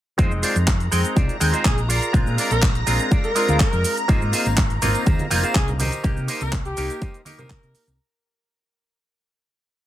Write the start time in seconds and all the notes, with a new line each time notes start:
0.18 F2 G#3 C4 D#4 F4 G#4 C5 D#5 G5 A#5, kick, closed hi-hat, shaker
0.32 F1, shaker
0.42 F4 G#4 C5 D5, open hi-hat, shaker
0.56 F2, closed hi-hat, shaker
0.68 kick, clap, closed hi-hat, shaker
0.80 closed hi-hat, shaker
0.92 F2 G#3 C4 D#4 G5, open hi-hat, shaker
1.05 closed hi-hat, shaker
1.16 C2 F4 G#4 C5 D5, kick, closed hi-hat, shaker
1.29 closed hi-hat, shaker
1.40 D#2 G#3 C4 D#4 G5, open hi-hat, shaker
1.52 F4 G#4 C5 D#5, closed hi-hat, shaker
1.65 A#1 G#4, kick, clap, closed hi-hat, shaker
1.77 muted clean electric guitar stroke, closed hi-hat, shaker
1.88 F4 G#4 A#4 D5, open hi-hat, shaker
2.02 closed hi-hat, shaker
2.13 A#1 G#3 C4 D4 F4, kick, closed hi-hat, shaker
2.27 A#2, shaker
2.38 F4 G#4 A#4 D5, open hi-hat, shaker
2.51 A#1 A#4, closed hi-hat, shaker
2.62 kick, clap, closed hi-hat, shaker
2.75 closed hi-hat, shaker
2.87 A#1 G#3 C4 D4 F4, open hi-hat, shaker
2.99 closed hi-hat, shaker
3.11 F4 G#4 A#4 D5, kick, closed hi-hat, shaker
3.24 A#4, closed hi-hat, shaker
3.35 G#3 C4 D4 F4, open hi-hat, shaker
3.48 D2 F4 G#4 A#4 F5, closed hi-hat, shaker
3.60 A#4, kick, clap, closed hi-hat, shaker
3.72 F2, muted clean electric guitar stroke, closed hi-hat, shaker
3.84 open hi-hat, shaker
3.97 closed hi-hat, shaker
4.08 G#1 A#3 C4 D#4 F4 G#4 C5 D#5, kick, closed hi-hat, tambourine, shaker
4.22 G#2, shaker
4.33 F4 G#4 C5 D#5, open hi-hat, tambourine, shaker
4.46 G#1, closed hi-hat, tambourine, shaker
4.57 kick, clap, closed hi-hat, shaker
4.70 closed hi-hat, shaker
4.82 G#1 A#3 C4 D#4 F4, open hi-hat, tambourine, low conga, shaker
4.95 closed hi-hat, tambourine, shaker
5.06 D#2 F4 G#4 C5 D#5, kick, closed hi-hat, shaker
5.19 closed hi-hat, high conga, shaker
5.30 F1 A#3 C4 D#4 F4, open hi-hat, tambourine, shaker
5.43 F4 G#4 C5 F5, muted fingered electric bass stroke, closed hi-hat, tambourine, shaker
5.55 C2 G#4, kick, clap, closed hi-hat, shaker
5.67 muted clean electric guitar stroke, closed hi-hat, low conga, shaker
5.79 G4 A#4 C5 D#5, open hi-hat, tambourine, high conga, low conga, shaker
5.92 closed hi-hat, tambourine, shaker
6.04 C2 A#3 D#4 G4, kick, closed hi-hat, shaker
6.17 C3, shaker
6.28 G4 A#4 C5 D#5, open hi-hat, tambourine, shaker
6.41 C2 A#4, closed hi-hat, tambourine, shaker
6.52 muted clean electric guitar stroke, kick, clap, closed hi-hat, shaker
6.65 G4, closed hi-hat, shaker
6.77 C2 A#3 D#4 G4, open hi-hat, tambourine, shaker
6.90 closed hi-hat, tambourine, shaker
7.01 G4 A#4 C5 D#5, kick, closed hi-hat, shaker
7.14 closed hi-hat, shaker
7.25 A#3 D#4 G4, open hi-hat, tambourine, high conga, shaker
7.38 C3 G4 A#4 C5 D#5, closed hi-hat, tambourine, high conga, low conga, shaker
7.50 kick, clap, closed hi-hat, shaker
7.62 C3, muted clean electric guitar stroke, closed hi-hat, shaker
7.75 open hi-hat, tambourine, shaker
7.87 C2, closed hi-hat, tambourine, shaker